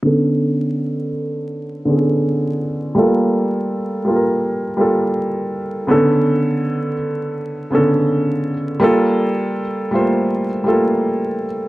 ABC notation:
X:1
M:4/4
L:1/8
Q:"Swing 16ths" 1/4=82
K:Glyd
V:1 name="Felt piano"
[D,B,CA]3 z2 [D,B,C^GA]2 z | [G,A,_B,=FA]2 z [G,B,FA_B] z [G,B,FA]2 z | [C,D,B,CA]3 z2 [C,D,B,CA]2 z | [G,_B,=FA]2 z [G,A,B,F=c] z [G,A,B,FA]2 z |]